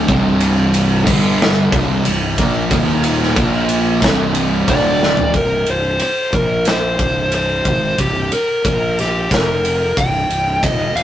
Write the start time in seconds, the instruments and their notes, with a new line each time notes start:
0.08 fingered electric bass C1, distorted electric guitar C2 G2 C3, kick, ride
0.40 ride
0.74 ride
1.07 fingered electric bass G1, distorted electric guitar G2 D3 G3, kick, crash
1.42 snare
1.72 fingered electric bass C1, distorted electric guitar C2 G2 C3, kick, ride
2.05 fingered electric bass C1, distorted electric guitar C2 G2, ride
2.38 fingered electric bass A#1, distorted electric guitar A#2 F3 A#3, kick, ride
2.71 fingered electric bass D#1, distorted electric guitar D#2 A#2 D#3, kick, ride
3.04 ride
3.23 snare
3.36 fingered electric bass A#1, distorted electric guitar A#2 F3 A#3, kick, ride
3.69 ride
4.02 fingered electric bass C1, distorted electric guitar C2 G2 C3, kick, snare, ride
4.35 ride
4.68 fingered electric bass D1, distorted electric guitar D2 A2 D3, lead electric guitar D5, kick, ride
5.03 snare
5.17 floor tom
5.34 fingered electric bass C1, lead electric guitar A#4, kick, ride
5.66 fingered electric bass C1, lead electric guitar C5, ride
5.99 lead electric guitar C5, ride
6.33 fingered electric bass A#1, lead electric guitar A#4, kick, ride
6.65 lead electric guitar C5, snare, ride
6.99 fingered electric bass C1, kick, ride
7.32 lead electric guitar C5, ride
7.65 fingered electric bass G#1, kick, ride
7.98 fingered electric bass C1, lead electric guitar G4, kick, ride
8.32 lead electric guitar A#4, ride
8.64 fingered electric bass A#1, lead electric guitar A#4, kick, ride
8.99 lead electric guitar G4, snare, ride
9.31 fingered electric bass F1, lead electric guitar A#4, kick, snare, ride
9.65 ride
9.97 fingered electric bass C1, lead electric guitar G5, kick, ride
10.29 fingered electric bass C1, ride
10.63 fingered electric bass D#1, lead electric guitar D#5, kick, ride
10.95 fingered electric bass D#1, lead electric guitar F5, ride